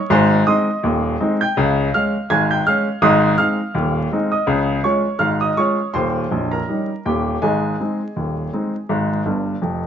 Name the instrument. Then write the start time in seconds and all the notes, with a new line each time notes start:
grand piano
0.10 G#1 G#2 C5 G#5 C6
0.47 G#3 C4 D#4 D#5 C6 D#6
0.83 D#1 D#2
1.20 G#3 C4 D#4
1.41 G5 G6
1.57 C#2 C#3
1.94 G#3 C#4 F5 F6
2.30 G#1 G#2 G#5 G#6
2.51 G5 G6
2.67 G#3 C#4 F5 F6
3.02 G#1 G#2 D#5 C6 D#6
3.38 G#3 C4 D#4 F5 F6
3.75 D#1 D#2
4.11 G#3 C4 D#4
4.32 D#5 D#6
4.47 C#2 C#3
4.84 G#3 C#4 F4 C#5 C#6
5.19 G#1 G#2 F5 F6
5.41 D#5 D#6
5.57 G#3 C#4 F4 C#5 C#6
5.94 D#1 D#2 C5 C6
6.31 A#0 A#1
6.51 A#4 A#5
6.69 G3 C#4 D#4
7.06 D#1 D#2 G4 G5
7.42 G#1 G#2 G#4 D#5 G#5
7.80 G#3 C4 D#4
8.16 D#1 D#2
8.53 G#3 C4 D#4
8.89 G#1 G#2
9.26 G1 G2
9.62 F1 F2